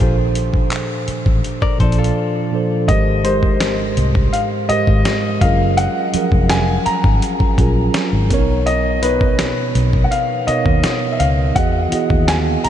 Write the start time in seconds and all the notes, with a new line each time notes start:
Already playing: F4 G#4
0.00 A#1 A#2 F3 D4 A4 C5
0.35 closed hi-hat
0.54 kick
0.71 clap, closed hi-hat
1.08 muted fingered electric bass stroke, closed hi-hat
1.26 A1, kick
1.44 closed hi-hat
1.62 A#4 D5, kick
1.79 A#1 A#2 F3 D4 A4 C5, kick, closed hi-hat
1.83 D5
1.92 closed hi-hat
1.98 F4 A4
2.04 closed hi-hat
2.51 A#2 F3 D4 A4
2.56 C5
2.87 G#1 G#2 G#3 G4 A#4 D#5, kick, closed hi-hat
2.92 C5
3.23 G#2 G#3 G4 A#4 C5, closed hi-hat
3.28 C5
3.43 kick
3.60 snare, closed hi-hat
3.97 C2, closed hi-hat
4.15 kick
4.33 F5, closed hi-hat
4.68 G#2 G#3 G4 A#4 D#5, muted fingered electric bass stroke, closed hi-hat
4.72 C5
4.87 G#1, kick
5.05 snare, closed hi-hat
5.40 F#1 F#3 C#4 F4 G#4 F5, kick, closed hi-hat
5.45 A#4
5.77 F#5, closed hi-hat
6.12 F3 F#3 C#4 G#4, muted fingered electric bass stroke, closed hi-hat
6.17 A#4
6.32 F1, kick
6.50 G#5, snare, closed hi-hat
6.86 A#5, muted fingered electric bass stroke, closed hi-hat
7.04 G#1, kick
7.22 closed hi-hat
7.40 muted fingered electric bass stroke, kick
7.57 A#1 F#3 C#4 F4 G#4, kick, closed hi-hat
7.61 A#4
7.94 snare, closed hi-hat
8.13 G#1
8.29 B1 B2 B3 C#4 A#4, kick, closed hi-hat
8.34 C#5
8.38 D#4
8.66 D#5, closed hi-hat
9.02 B2 B3 D#4 B4, closed hi-hat
9.06 C#5
9.21 kick
9.39 snare, closed hi-hat
9.75 B1, closed hi-hat
9.93 kick
10.04 F#5
10.11 F5, closed hi-hat
10.46 B2 B3 D#4 A#4 D#5, muted fingered electric bass stroke, closed hi-hat
10.51 C#5
10.66 D#2, kick
10.84 snare, closed hi-hat
11.12 E5
11.19 C#2 F5, closed hi-hat
11.55 E2 E3 B3 F#4 G#4 F#5, kick, closed hi-hat
11.59 D#5
11.91 B3 E4 F#4 G#4, muted fingered electric bass stroke, closed hi-hat
11.95 D#5
12.10 D#2, kick
12.28 G#5, snare, closed hi-hat
12.64 A#5, muted fingered electric bass stroke, closed hi-hat